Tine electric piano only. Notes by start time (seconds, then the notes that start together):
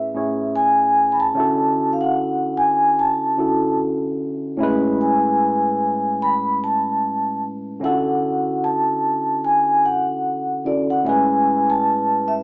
Already playing: A2 C#4 E4 G#4 B4
0.14 A2 C#4 E4 G#4 C#5
1.34 D3 C#4 E4
1.38 F#4 A4
3.37 D3 C#4 E4 F#4 A4
4.57 A2 C#4 E4
4.62 G#3 B4
7.80 D3 C#4 E4
7.84 F4 A4
7.91 F#4
10.64 D3 C#4 E4 F#4 A4
11.03 A2 C#4 E4
11.08 G#3 B4